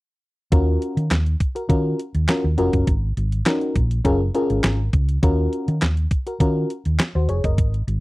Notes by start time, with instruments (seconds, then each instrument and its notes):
0.52 fingered electric bass D#2, fm electric piano C#4 F4 F#4 A#4, kick, closed hi-hat
0.82 closed hi-hat
0.97 fingered electric bass D#3, closed hi-hat
1.11 fingered electric bass D#2, snare, clap, closed hi-hat
1.26 closed hi-hat
1.40 kick, closed hi-hat
1.55 fm electric piano F#4 A#4, closed hi-hat
1.69 fingered electric bass D#3, fm electric piano C#4 F4 F#4 A#4, kick, closed hi-hat
1.99 closed hi-hat
2.15 fingered electric bass D#2, closed hi-hat
2.28 fm electric piano C#4 F4 F#4 A#4, snare, clap, closed hi-hat
2.44 fingered electric bass D#2
2.58 fingered electric bass F1, fm electric piano C#4 F4 F#4 A#4, closed hi-hat
2.73 fingered electric bass F#1, kick, closed hi-hat
2.87 fingered electric bass G#1, kick, closed hi-hat
3.17 fingered electric bass G#1, closed hi-hat
3.32 closed hi-hat
3.46 fm electric piano C#4 D#4 F#4 A#4, snare, clap, closed hi-hat
3.61 closed hi-hat
3.75 fingered electric bass A#1, kick, closed hi-hat
3.91 closed hi-hat
4.05 fingered electric bass F#1, fm electric piano C#4 F4 G#4 A#4, kick, closed hi-hat
4.35 fm electric piano C#4 F4 G#4 A#4, closed hi-hat
4.50 fingered electric bass G#1, closed hi-hat
4.64 fingered electric bass G#1, snare, clap, closed hi-hat
4.93 fingered electric bass C#2, kick, closed hi-hat
5.09 closed hi-hat
5.23 fingered electric bass D#2, fm electric piano C#4 F4 F#4 A#4, kick, closed hi-hat
5.53 closed hi-hat
5.68 fingered electric bass D#3, closed hi-hat
5.82 fingered electric bass D#2, snare, clap, closed hi-hat
5.97 closed hi-hat
6.11 kick, closed hi-hat
6.27 fm electric piano F#4 A#4, closed hi-hat
6.40 fingered electric bass D#3, fm electric piano C#4 F4 F#4 A#4, kick, closed hi-hat
6.70 closed hi-hat
6.85 fingered electric bass D#2, closed hi-hat
7.00 snare, clap, closed hi-hat
7.15 fingered electric bass D#2, fm electric piano F#4 C5
7.29 fingered electric bass F1, fm electric piano G#4 C#5, closed hi-hat
7.44 fingered electric bass F#1, fm electric piano A#4 D#5, kick, closed hi-hat
7.58 fingered electric bass G#1, kick, closed hi-hat
7.74 closed hi-hat
7.87 fingered electric bass G#1, closed hi-hat